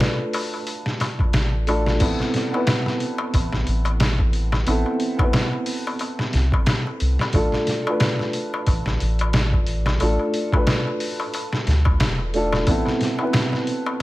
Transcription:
Already playing: upright piano A3 D4 F4 A4 B4
0.00 snare, open hi-hat, darbuka tek
0.33 open hi-hat, darbuka tek
0.54 darbuka tek
0.67 open hi-hat, darbuka tek
0.86 snare
1.00 snare, open hi-hat, darbuka tek
1.19 kick, darbuka tek
1.33 sub bass A1, snare, open hi-hat, darbuka tek
1.67 upright piano A3 D4 F4 A4, open hi-hat, darbuka tek
1.86 snare, darbuka tek
2.00 sub bass A1, upright piano B3 C4 E4 A4, kick, open hi-hat, crash, darbuka tek
2.20 snare, darbuka tek
2.34 snare, open hi-hat
2.51 upright piano B3 C4, darbuka tek
2.55 upright piano E4 B4
2.67 snare, open hi-hat, darbuka tek
2.86 snare, darbuka tek
3.00 open hi-hat
3.18 darbuka tek
3.34 sub bass A1, kick, open hi-hat, darbuka tek
3.52 snare, darbuka tek
3.67 sub bass A1, open hi-hat
3.85 closed hi-hat, darbuka tek
4.00 snare, open hi-hat, darbuka tek
4.19 kick, darbuka tek
4.33 open hi-hat
4.52 snare, darbuka tek
4.67 sub bass A1, upright piano B3 C4 E4 A4, open hi-hat, darbuka tek
4.86 darbuka tek
5.00 open hi-hat
5.17 upright piano B3 C4, kick, darbuka tek
5.21 upright piano E4 B4
5.33 snare, open hi-hat, darbuka tek
5.53 darbuka tek
5.66 open hi-hat
5.87 darbuka tek
5.99 open hi-hat, darbuka tek
6.19 snare, darbuka tek
6.33 sub bass C2, snare, open hi-hat
6.52 kick, darbuka tek
6.66 snare, open hi-hat, darbuka tek
6.87 darbuka tek
7.00 sub bass C2, open hi-hat
7.19 snare, darbuka tek
7.33 sub bass A1, upright piano A3 D4 F4 A4, kick, open hi-hat, darbuka tek
7.52 snare, darbuka tek
7.67 snare, open hi-hat
7.85 upright piano A3 D4, darbuka tek
7.89 upright piano F4 B4
8.00 snare, open hi-hat, darbuka tek
8.19 snare, darbuka tek
8.33 open hi-hat
8.54 darbuka tek
8.66 sub bass A1, kick, open hi-hat, darbuka tek
8.86 snare, darbuka tek
9.00 sub bass A1, open hi-hat
9.19 closed hi-hat, darbuka tek
9.33 snare, open hi-hat, darbuka tek
9.52 kick, darbuka tek
9.67 open hi-hat
9.86 snare, darbuka tek
10.00 sub bass A1, upright piano A3 D4 F4 A4, open hi-hat, darbuka tek
10.19 darbuka tek
10.34 open hi-hat
10.51 upright piano A3 D4, kick, darbuka tek
10.55 upright piano F4 B4
10.67 snare, open hi-hat, darbuka tek
10.87 darbuka tek
11.00 open hi-hat
11.20 darbuka tek
11.34 open hi-hat, darbuka tek
11.52 snare, darbuka tek
11.67 sub bass D2, snare, open hi-hat
11.85 kick, darbuka tek
12.00 sub bass E1, snare, open hi-hat, darbuka tek
12.18 darbuka tek
12.34 upright piano A3 D4 F4 A4, open hi-hat
12.52 snare, darbuka tek
12.67 sub bass A1, upright piano B3 C4 E4 A4, kick, open hi-hat, darbuka tek
12.85 snare, darbuka tek
13.01 snare, open hi-hat
13.17 upright piano B3 C4, darbuka tek
13.21 upright piano E4 B4
13.33 snare, open hi-hat, darbuka tek
13.52 snare, darbuka tek
13.67 open hi-hat
13.86 darbuka tek

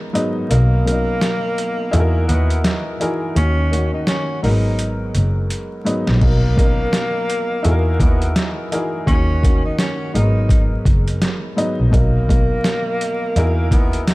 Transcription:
Already playing: upright piano G#2 F#3 B3 A#4
0.13 upright piano G#2 F#3 B3 D#4, closed hi-hat
0.49 double bass B1, upright piano B2 F#3 D#4 A#4, tenor saxophone A#3, closed hi-hat
0.85 upright piano B2 F#3 C#4 A#4, closed hi-hat
0.93 upright piano D#4
1.21 snare, closed hi-hat
1.58 closed hi-hat
1.91 double bass E2, upright piano D#4 E4 F#4 G#4 A4, closed hi-hat
2.00 upright piano A#4
2.28 double bass D#2, tenor saxophone B3, closed hi-hat
2.50 closed hi-hat
2.64 snare, closed hi-hat
3.00 upright piano E3 D#4 F#4 G#4 A#4, closed hi-hat
3.35 double bass D#2, upright piano D#3 A#3 C#4 F#4, tenor saxophone C#4, closed hi-hat
3.71 upright piano D#3 A#3 C#4 F#4, closed hi-hat
3.93 tenor saxophone D#4
4.07 tenor saxophone C#4, snare, closed hi-hat
4.42 double bass G#1, upright piano G#2 F#3 A#3 A#4, tenor saxophone D#4, open hi-hat
4.50 upright piano B3
4.79 closed hi-hat
5.15 double bass F#1, closed hi-hat
5.50 closed hi-hat
5.84 upright piano G#2 F#3 B3 D#4, closed hi-hat
6.07 double bass A#1, snare
6.21 double bass B1, upright piano B2 F#3 D#4 A#4, tenor saxophone A#3, kick, crash
6.57 upright piano B2 F#3 C#4 A#4, kick, closed hi-hat
6.64 upright piano D#4
6.93 snare, closed hi-hat
7.30 closed hi-hat
7.63 double bass E2, upright piano D#4 E4 F#4 G#4 A4, closed hi-hat
7.71 upright piano A#4
8.00 double bass D#2, tenor saxophone B3, kick, closed hi-hat
8.22 closed hi-hat
8.36 snare, closed hi-hat
8.71 upright piano E3 D#4 F#4 G#4 A#4, closed hi-hat
9.06 double bass D#2, upright piano D#3 A#3 C#4 F#4, tenor saxophone C#4, kick, closed hi-hat
9.42 upright piano D#3 A#3 C#4 F#4, kick, closed hi-hat
9.65 tenor saxophone D#4
9.79 tenor saxophone C#4, snare, closed hi-hat
10.14 double bass G#1, upright piano G#2 F#3 A#3 A#4, tenor saxophone D#4, closed hi-hat
10.22 upright piano B3
10.49 kick, closed hi-hat
10.85 double bass F#1, kick, closed hi-hat
11.08 closed hi-hat
11.22 snare, closed hi-hat
11.56 upright piano G#2 F#3 B3 D#4, closed hi-hat
11.79 double bass A#1
11.91 double bass B1, upright piano B2 F#3 D#4 A#4, tenor saxophone A#3, kick, closed hi-hat
12.28 upright piano B2 F#3 D#4 A#4, kick, closed hi-hat
12.64 snare, closed hi-hat
13.01 closed hi-hat
13.36 double bass E2, upright piano D#4 E4 F#4 G#4 A#4, closed hi-hat
13.71 double bass D#2, tenor saxophone B3, kick, closed hi-hat
13.93 closed hi-hat
14.08 snare, closed hi-hat

